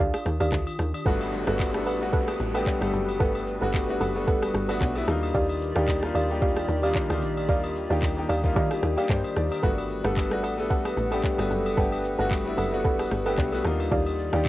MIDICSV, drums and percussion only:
0, 0, Header, 1, 2, 480
1, 0, Start_track
1, 0, Key_signature, 1, "major"
1, 0, Tempo, 535714
1, 950, Time_signature, 4, 2, 24, 8
1, 12979, End_track
2, 0, Start_track
2, 0, Title_t, "Drums"
2, 123, Note_on_c, 9, 67, 67
2, 124, Note_on_c, 9, 37, 100
2, 124, Note_on_c, 9, 82, 56
2, 213, Note_off_c, 9, 67, 0
2, 214, Note_off_c, 9, 37, 0
2, 214, Note_off_c, 9, 82, 0
2, 229, Note_on_c, 9, 82, 81
2, 231, Note_on_c, 9, 37, 93
2, 319, Note_off_c, 9, 82, 0
2, 321, Note_off_c, 9, 37, 0
2, 359, Note_on_c, 9, 82, 62
2, 361, Note_on_c, 9, 67, 79
2, 448, Note_off_c, 9, 82, 0
2, 451, Note_off_c, 9, 67, 0
2, 468, Note_on_c, 9, 36, 98
2, 470, Note_on_c, 9, 39, 88
2, 471, Note_on_c, 9, 82, 88
2, 558, Note_off_c, 9, 36, 0
2, 560, Note_off_c, 9, 39, 0
2, 560, Note_off_c, 9, 82, 0
2, 600, Note_on_c, 9, 67, 69
2, 602, Note_on_c, 9, 82, 63
2, 689, Note_off_c, 9, 67, 0
2, 692, Note_off_c, 9, 82, 0
2, 707, Note_on_c, 9, 46, 79
2, 707, Note_on_c, 9, 82, 94
2, 709, Note_on_c, 9, 37, 91
2, 797, Note_off_c, 9, 46, 0
2, 797, Note_off_c, 9, 82, 0
2, 799, Note_off_c, 9, 37, 0
2, 845, Note_on_c, 9, 67, 82
2, 845, Note_on_c, 9, 82, 52
2, 934, Note_off_c, 9, 82, 0
2, 935, Note_off_c, 9, 67, 0
2, 949, Note_on_c, 9, 36, 122
2, 949, Note_on_c, 9, 82, 58
2, 1039, Note_off_c, 9, 36, 0
2, 1039, Note_off_c, 9, 82, 0
2, 1081, Note_on_c, 9, 67, 70
2, 1085, Note_on_c, 9, 82, 52
2, 1171, Note_off_c, 9, 67, 0
2, 1174, Note_off_c, 9, 82, 0
2, 1192, Note_on_c, 9, 82, 86
2, 1282, Note_off_c, 9, 82, 0
2, 1319, Note_on_c, 9, 37, 96
2, 1320, Note_on_c, 9, 82, 55
2, 1409, Note_off_c, 9, 37, 0
2, 1409, Note_off_c, 9, 82, 0
2, 1427, Note_on_c, 9, 82, 77
2, 1430, Note_on_c, 9, 36, 102
2, 1431, Note_on_c, 9, 39, 103
2, 1433, Note_on_c, 9, 67, 61
2, 1516, Note_off_c, 9, 82, 0
2, 1519, Note_off_c, 9, 36, 0
2, 1520, Note_off_c, 9, 39, 0
2, 1522, Note_off_c, 9, 67, 0
2, 1562, Note_on_c, 9, 37, 96
2, 1566, Note_on_c, 9, 82, 49
2, 1652, Note_off_c, 9, 37, 0
2, 1655, Note_off_c, 9, 82, 0
2, 1665, Note_on_c, 9, 82, 89
2, 1673, Note_on_c, 9, 67, 70
2, 1755, Note_off_c, 9, 82, 0
2, 1763, Note_off_c, 9, 67, 0
2, 1802, Note_on_c, 9, 82, 54
2, 1891, Note_off_c, 9, 82, 0
2, 1910, Note_on_c, 9, 82, 73
2, 1911, Note_on_c, 9, 36, 123
2, 2000, Note_off_c, 9, 82, 0
2, 2001, Note_off_c, 9, 36, 0
2, 2042, Note_on_c, 9, 37, 91
2, 2043, Note_on_c, 9, 82, 52
2, 2044, Note_on_c, 9, 67, 68
2, 2132, Note_off_c, 9, 37, 0
2, 2132, Note_off_c, 9, 82, 0
2, 2134, Note_off_c, 9, 67, 0
2, 2148, Note_on_c, 9, 82, 80
2, 2237, Note_off_c, 9, 82, 0
2, 2279, Note_on_c, 9, 82, 58
2, 2283, Note_on_c, 9, 67, 79
2, 2369, Note_off_c, 9, 82, 0
2, 2372, Note_off_c, 9, 67, 0
2, 2389, Note_on_c, 9, 36, 91
2, 2389, Note_on_c, 9, 77, 75
2, 2391, Note_on_c, 9, 39, 85
2, 2391, Note_on_c, 9, 82, 80
2, 2478, Note_off_c, 9, 36, 0
2, 2479, Note_off_c, 9, 77, 0
2, 2480, Note_off_c, 9, 39, 0
2, 2481, Note_off_c, 9, 82, 0
2, 2520, Note_on_c, 9, 67, 68
2, 2523, Note_on_c, 9, 82, 61
2, 2526, Note_on_c, 9, 37, 92
2, 2610, Note_off_c, 9, 67, 0
2, 2612, Note_off_c, 9, 82, 0
2, 2616, Note_off_c, 9, 37, 0
2, 2628, Note_on_c, 9, 82, 91
2, 2718, Note_off_c, 9, 82, 0
2, 2765, Note_on_c, 9, 67, 77
2, 2767, Note_on_c, 9, 82, 48
2, 2855, Note_off_c, 9, 67, 0
2, 2856, Note_off_c, 9, 82, 0
2, 2870, Note_on_c, 9, 36, 119
2, 2872, Note_on_c, 9, 82, 58
2, 2960, Note_off_c, 9, 36, 0
2, 2961, Note_off_c, 9, 82, 0
2, 3002, Note_on_c, 9, 67, 67
2, 3007, Note_on_c, 9, 82, 52
2, 3091, Note_off_c, 9, 67, 0
2, 3097, Note_off_c, 9, 82, 0
2, 3113, Note_on_c, 9, 82, 80
2, 3202, Note_off_c, 9, 82, 0
2, 3241, Note_on_c, 9, 82, 53
2, 3330, Note_off_c, 9, 82, 0
2, 3349, Note_on_c, 9, 82, 82
2, 3351, Note_on_c, 9, 36, 100
2, 3351, Note_on_c, 9, 67, 61
2, 3353, Note_on_c, 9, 39, 110
2, 3438, Note_off_c, 9, 82, 0
2, 3440, Note_off_c, 9, 36, 0
2, 3441, Note_off_c, 9, 67, 0
2, 3443, Note_off_c, 9, 39, 0
2, 3485, Note_on_c, 9, 82, 49
2, 3574, Note_off_c, 9, 82, 0
2, 3586, Note_on_c, 9, 82, 89
2, 3591, Note_on_c, 9, 67, 73
2, 3675, Note_off_c, 9, 82, 0
2, 3681, Note_off_c, 9, 67, 0
2, 3723, Note_on_c, 9, 82, 56
2, 3813, Note_off_c, 9, 82, 0
2, 3832, Note_on_c, 9, 36, 121
2, 3832, Note_on_c, 9, 82, 76
2, 3922, Note_off_c, 9, 36, 0
2, 3922, Note_off_c, 9, 82, 0
2, 3963, Note_on_c, 9, 67, 65
2, 3965, Note_on_c, 9, 37, 89
2, 3965, Note_on_c, 9, 82, 55
2, 4053, Note_off_c, 9, 67, 0
2, 4054, Note_off_c, 9, 37, 0
2, 4054, Note_off_c, 9, 82, 0
2, 4070, Note_on_c, 9, 82, 79
2, 4073, Note_on_c, 9, 37, 87
2, 4160, Note_off_c, 9, 82, 0
2, 4162, Note_off_c, 9, 37, 0
2, 4200, Note_on_c, 9, 82, 55
2, 4201, Note_on_c, 9, 67, 79
2, 4289, Note_off_c, 9, 82, 0
2, 4291, Note_off_c, 9, 67, 0
2, 4309, Note_on_c, 9, 36, 93
2, 4309, Note_on_c, 9, 77, 72
2, 4312, Note_on_c, 9, 39, 86
2, 4312, Note_on_c, 9, 82, 83
2, 4399, Note_off_c, 9, 36, 0
2, 4399, Note_off_c, 9, 77, 0
2, 4401, Note_off_c, 9, 39, 0
2, 4402, Note_off_c, 9, 82, 0
2, 4439, Note_on_c, 9, 67, 68
2, 4444, Note_on_c, 9, 82, 60
2, 4528, Note_off_c, 9, 67, 0
2, 4533, Note_off_c, 9, 82, 0
2, 4549, Note_on_c, 9, 82, 87
2, 4551, Note_on_c, 9, 37, 94
2, 4638, Note_off_c, 9, 82, 0
2, 4640, Note_off_c, 9, 37, 0
2, 4685, Note_on_c, 9, 67, 75
2, 4687, Note_on_c, 9, 82, 49
2, 4775, Note_off_c, 9, 67, 0
2, 4776, Note_off_c, 9, 82, 0
2, 4790, Note_on_c, 9, 36, 118
2, 4790, Note_on_c, 9, 82, 57
2, 4880, Note_off_c, 9, 36, 0
2, 4880, Note_off_c, 9, 82, 0
2, 4923, Note_on_c, 9, 67, 68
2, 4926, Note_on_c, 9, 82, 52
2, 5012, Note_off_c, 9, 67, 0
2, 5016, Note_off_c, 9, 82, 0
2, 5032, Note_on_c, 9, 82, 85
2, 5122, Note_off_c, 9, 82, 0
2, 5158, Note_on_c, 9, 37, 100
2, 5159, Note_on_c, 9, 82, 52
2, 5248, Note_off_c, 9, 37, 0
2, 5249, Note_off_c, 9, 82, 0
2, 5267, Note_on_c, 9, 82, 77
2, 5270, Note_on_c, 9, 36, 100
2, 5271, Note_on_c, 9, 39, 109
2, 5271, Note_on_c, 9, 67, 61
2, 5356, Note_off_c, 9, 82, 0
2, 5359, Note_off_c, 9, 36, 0
2, 5360, Note_off_c, 9, 39, 0
2, 5361, Note_off_c, 9, 67, 0
2, 5400, Note_on_c, 9, 37, 95
2, 5404, Note_on_c, 9, 82, 52
2, 5490, Note_off_c, 9, 37, 0
2, 5494, Note_off_c, 9, 82, 0
2, 5506, Note_on_c, 9, 82, 86
2, 5512, Note_on_c, 9, 67, 71
2, 5595, Note_off_c, 9, 82, 0
2, 5602, Note_off_c, 9, 67, 0
2, 5642, Note_on_c, 9, 82, 53
2, 5732, Note_off_c, 9, 82, 0
2, 5751, Note_on_c, 9, 82, 76
2, 5752, Note_on_c, 9, 36, 122
2, 5841, Note_off_c, 9, 36, 0
2, 5841, Note_off_c, 9, 82, 0
2, 5882, Note_on_c, 9, 37, 93
2, 5882, Note_on_c, 9, 82, 54
2, 5883, Note_on_c, 9, 67, 65
2, 5972, Note_off_c, 9, 37, 0
2, 5972, Note_off_c, 9, 82, 0
2, 5973, Note_off_c, 9, 67, 0
2, 5987, Note_on_c, 9, 82, 79
2, 6077, Note_off_c, 9, 82, 0
2, 6118, Note_on_c, 9, 82, 58
2, 6121, Note_on_c, 9, 67, 76
2, 6207, Note_off_c, 9, 82, 0
2, 6211, Note_off_c, 9, 67, 0
2, 6228, Note_on_c, 9, 36, 91
2, 6229, Note_on_c, 9, 39, 87
2, 6229, Note_on_c, 9, 77, 77
2, 6229, Note_on_c, 9, 82, 83
2, 6318, Note_off_c, 9, 36, 0
2, 6318, Note_off_c, 9, 39, 0
2, 6319, Note_off_c, 9, 77, 0
2, 6319, Note_off_c, 9, 82, 0
2, 6360, Note_on_c, 9, 67, 66
2, 6360, Note_on_c, 9, 82, 63
2, 6364, Note_on_c, 9, 37, 93
2, 6449, Note_off_c, 9, 67, 0
2, 6450, Note_off_c, 9, 82, 0
2, 6453, Note_off_c, 9, 37, 0
2, 6467, Note_on_c, 9, 82, 89
2, 6556, Note_off_c, 9, 82, 0
2, 6604, Note_on_c, 9, 82, 51
2, 6605, Note_on_c, 9, 67, 74
2, 6694, Note_off_c, 9, 67, 0
2, 6694, Note_off_c, 9, 82, 0
2, 6708, Note_on_c, 9, 82, 59
2, 6709, Note_on_c, 9, 36, 124
2, 6798, Note_off_c, 9, 82, 0
2, 6799, Note_off_c, 9, 36, 0
2, 6841, Note_on_c, 9, 67, 69
2, 6845, Note_on_c, 9, 82, 52
2, 6931, Note_off_c, 9, 67, 0
2, 6934, Note_off_c, 9, 82, 0
2, 6950, Note_on_c, 9, 82, 81
2, 7040, Note_off_c, 9, 82, 0
2, 7078, Note_on_c, 9, 82, 55
2, 7168, Note_off_c, 9, 82, 0
2, 7185, Note_on_c, 9, 82, 78
2, 7189, Note_on_c, 9, 36, 103
2, 7190, Note_on_c, 9, 39, 101
2, 7192, Note_on_c, 9, 67, 61
2, 7275, Note_off_c, 9, 82, 0
2, 7279, Note_off_c, 9, 36, 0
2, 7279, Note_off_c, 9, 39, 0
2, 7281, Note_off_c, 9, 67, 0
2, 7324, Note_on_c, 9, 82, 49
2, 7413, Note_off_c, 9, 82, 0
2, 7426, Note_on_c, 9, 82, 89
2, 7432, Note_on_c, 9, 67, 72
2, 7516, Note_off_c, 9, 82, 0
2, 7521, Note_off_c, 9, 67, 0
2, 7562, Note_on_c, 9, 36, 90
2, 7562, Note_on_c, 9, 82, 56
2, 7651, Note_off_c, 9, 82, 0
2, 7652, Note_off_c, 9, 36, 0
2, 7671, Note_on_c, 9, 82, 73
2, 7672, Note_on_c, 9, 36, 119
2, 7761, Note_off_c, 9, 36, 0
2, 7761, Note_off_c, 9, 82, 0
2, 7804, Note_on_c, 9, 37, 91
2, 7804, Note_on_c, 9, 67, 66
2, 7804, Note_on_c, 9, 82, 52
2, 7893, Note_off_c, 9, 37, 0
2, 7893, Note_off_c, 9, 67, 0
2, 7893, Note_off_c, 9, 82, 0
2, 7910, Note_on_c, 9, 82, 80
2, 7912, Note_on_c, 9, 37, 84
2, 7999, Note_off_c, 9, 82, 0
2, 8001, Note_off_c, 9, 37, 0
2, 8040, Note_on_c, 9, 82, 56
2, 8043, Note_on_c, 9, 67, 76
2, 8129, Note_off_c, 9, 82, 0
2, 8132, Note_off_c, 9, 67, 0
2, 8149, Note_on_c, 9, 36, 92
2, 8150, Note_on_c, 9, 77, 74
2, 8152, Note_on_c, 9, 39, 82
2, 8152, Note_on_c, 9, 82, 81
2, 8239, Note_off_c, 9, 36, 0
2, 8240, Note_off_c, 9, 77, 0
2, 8241, Note_off_c, 9, 39, 0
2, 8242, Note_off_c, 9, 82, 0
2, 8281, Note_on_c, 9, 67, 66
2, 8283, Note_on_c, 9, 82, 61
2, 8371, Note_off_c, 9, 67, 0
2, 8372, Note_off_c, 9, 82, 0
2, 8388, Note_on_c, 9, 82, 88
2, 8390, Note_on_c, 9, 37, 88
2, 8478, Note_off_c, 9, 82, 0
2, 8480, Note_off_c, 9, 37, 0
2, 8526, Note_on_c, 9, 82, 48
2, 8527, Note_on_c, 9, 67, 78
2, 8616, Note_off_c, 9, 82, 0
2, 8617, Note_off_c, 9, 67, 0
2, 8631, Note_on_c, 9, 36, 119
2, 8631, Note_on_c, 9, 82, 59
2, 8720, Note_off_c, 9, 36, 0
2, 8721, Note_off_c, 9, 82, 0
2, 8764, Note_on_c, 9, 67, 67
2, 8767, Note_on_c, 9, 82, 51
2, 8854, Note_off_c, 9, 67, 0
2, 8857, Note_off_c, 9, 82, 0
2, 8874, Note_on_c, 9, 82, 82
2, 8963, Note_off_c, 9, 82, 0
2, 9001, Note_on_c, 9, 37, 98
2, 9001, Note_on_c, 9, 82, 55
2, 9090, Note_off_c, 9, 37, 0
2, 9091, Note_off_c, 9, 82, 0
2, 9108, Note_on_c, 9, 82, 79
2, 9111, Note_on_c, 9, 36, 102
2, 9113, Note_on_c, 9, 39, 104
2, 9113, Note_on_c, 9, 67, 62
2, 9198, Note_off_c, 9, 82, 0
2, 9200, Note_off_c, 9, 36, 0
2, 9202, Note_off_c, 9, 39, 0
2, 9203, Note_off_c, 9, 67, 0
2, 9242, Note_on_c, 9, 37, 93
2, 9245, Note_on_c, 9, 82, 52
2, 9331, Note_off_c, 9, 37, 0
2, 9335, Note_off_c, 9, 82, 0
2, 9348, Note_on_c, 9, 82, 88
2, 9353, Note_on_c, 9, 67, 75
2, 9438, Note_off_c, 9, 82, 0
2, 9442, Note_off_c, 9, 67, 0
2, 9485, Note_on_c, 9, 82, 53
2, 9575, Note_off_c, 9, 82, 0
2, 9592, Note_on_c, 9, 82, 72
2, 9593, Note_on_c, 9, 36, 115
2, 9682, Note_off_c, 9, 36, 0
2, 9682, Note_off_c, 9, 82, 0
2, 9723, Note_on_c, 9, 67, 70
2, 9724, Note_on_c, 9, 37, 92
2, 9724, Note_on_c, 9, 82, 56
2, 9813, Note_off_c, 9, 67, 0
2, 9814, Note_off_c, 9, 37, 0
2, 9814, Note_off_c, 9, 82, 0
2, 9829, Note_on_c, 9, 82, 82
2, 9919, Note_off_c, 9, 82, 0
2, 9959, Note_on_c, 9, 82, 58
2, 9961, Note_on_c, 9, 67, 76
2, 10049, Note_off_c, 9, 82, 0
2, 10051, Note_off_c, 9, 67, 0
2, 10069, Note_on_c, 9, 36, 92
2, 10069, Note_on_c, 9, 77, 73
2, 10071, Note_on_c, 9, 39, 83
2, 10072, Note_on_c, 9, 82, 82
2, 10158, Note_off_c, 9, 77, 0
2, 10159, Note_off_c, 9, 36, 0
2, 10161, Note_off_c, 9, 39, 0
2, 10161, Note_off_c, 9, 82, 0
2, 10200, Note_on_c, 9, 67, 66
2, 10204, Note_on_c, 9, 82, 61
2, 10207, Note_on_c, 9, 37, 89
2, 10290, Note_off_c, 9, 67, 0
2, 10293, Note_off_c, 9, 82, 0
2, 10297, Note_off_c, 9, 37, 0
2, 10309, Note_on_c, 9, 82, 87
2, 10399, Note_off_c, 9, 82, 0
2, 10447, Note_on_c, 9, 67, 78
2, 10448, Note_on_c, 9, 82, 50
2, 10537, Note_off_c, 9, 67, 0
2, 10537, Note_off_c, 9, 82, 0
2, 10550, Note_on_c, 9, 36, 114
2, 10550, Note_on_c, 9, 82, 57
2, 10640, Note_off_c, 9, 36, 0
2, 10640, Note_off_c, 9, 82, 0
2, 10682, Note_on_c, 9, 67, 69
2, 10686, Note_on_c, 9, 82, 56
2, 10772, Note_off_c, 9, 67, 0
2, 10776, Note_off_c, 9, 82, 0
2, 10793, Note_on_c, 9, 82, 86
2, 10882, Note_off_c, 9, 82, 0
2, 10919, Note_on_c, 9, 82, 52
2, 11009, Note_off_c, 9, 82, 0
2, 11027, Note_on_c, 9, 82, 79
2, 11030, Note_on_c, 9, 36, 105
2, 11031, Note_on_c, 9, 67, 66
2, 11032, Note_on_c, 9, 39, 105
2, 11117, Note_off_c, 9, 82, 0
2, 11120, Note_off_c, 9, 36, 0
2, 11121, Note_off_c, 9, 39, 0
2, 11121, Note_off_c, 9, 67, 0
2, 11165, Note_on_c, 9, 82, 51
2, 11254, Note_off_c, 9, 82, 0
2, 11266, Note_on_c, 9, 82, 88
2, 11271, Note_on_c, 9, 67, 71
2, 11356, Note_off_c, 9, 82, 0
2, 11360, Note_off_c, 9, 67, 0
2, 11402, Note_on_c, 9, 82, 52
2, 11491, Note_off_c, 9, 82, 0
2, 11510, Note_on_c, 9, 82, 71
2, 11511, Note_on_c, 9, 36, 121
2, 11600, Note_off_c, 9, 82, 0
2, 11601, Note_off_c, 9, 36, 0
2, 11642, Note_on_c, 9, 37, 94
2, 11642, Note_on_c, 9, 82, 55
2, 11643, Note_on_c, 9, 67, 67
2, 11731, Note_off_c, 9, 37, 0
2, 11731, Note_off_c, 9, 82, 0
2, 11733, Note_off_c, 9, 67, 0
2, 11748, Note_on_c, 9, 82, 82
2, 11750, Note_on_c, 9, 37, 90
2, 11837, Note_off_c, 9, 82, 0
2, 11839, Note_off_c, 9, 37, 0
2, 11878, Note_on_c, 9, 82, 59
2, 11880, Note_on_c, 9, 67, 76
2, 11967, Note_off_c, 9, 82, 0
2, 11970, Note_off_c, 9, 67, 0
2, 11988, Note_on_c, 9, 36, 97
2, 11988, Note_on_c, 9, 77, 75
2, 11989, Note_on_c, 9, 39, 83
2, 11990, Note_on_c, 9, 82, 81
2, 12077, Note_off_c, 9, 77, 0
2, 12078, Note_off_c, 9, 36, 0
2, 12079, Note_off_c, 9, 39, 0
2, 12080, Note_off_c, 9, 82, 0
2, 12118, Note_on_c, 9, 67, 66
2, 12121, Note_on_c, 9, 82, 64
2, 12208, Note_off_c, 9, 67, 0
2, 12210, Note_off_c, 9, 82, 0
2, 12225, Note_on_c, 9, 82, 91
2, 12227, Note_on_c, 9, 37, 87
2, 12315, Note_off_c, 9, 82, 0
2, 12317, Note_off_c, 9, 37, 0
2, 12364, Note_on_c, 9, 67, 73
2, 12364, Note_on_c, 9, 82, 48
2, 12454, Note_off_c, 9, 67, 0
2, 12454, Note_off_c, 9, 82, 0
2, 12469, Note_on_c, 9, 36, 121
2, 12469, Note_on_c, 9, 82, 59
2, 12559, Note_off_c, 9, 36, 0
2, 12559, Note_off_c, 9, 82, 0
2, 12601, Note_on_c, 9, 67, 68
2, 12605, Note_on_c, 9, 82, 55
2, 12690, Note_off_c, 9, 67, 0
2, 12695, Note_off_c, 9, 82, 0
2, 12711, Note_on_c, 9, 82, 81
2, 12801, Note_off_c, 9, 82, 0
2, 12839, Note_on_c, 9, 37, 100
2, 12840, Note_on_c, 9, 82, 51
2, 12928, Note_off_c, 9, 37, 0
2, 12929, Note_off_c, 9, 82, 0
2, 12947, Note_on_c, 9, 82, 80
2, 12950, Note_on_c, 9, 36, 102
2, 12950, Note_on_c, 9, 67, 64
2, 12951, Note_on_c, 9, 39, 106
2, 12979, Note_off_c, 9, 36, 0
2, 12979, Note_off_c, 9, 39, 0
2, 12979, Note_off_c, 9, 67, 0
2, 12979, Note_off_c, 9, 82, 0
2, 12979, End_track
0, 0, End_of_file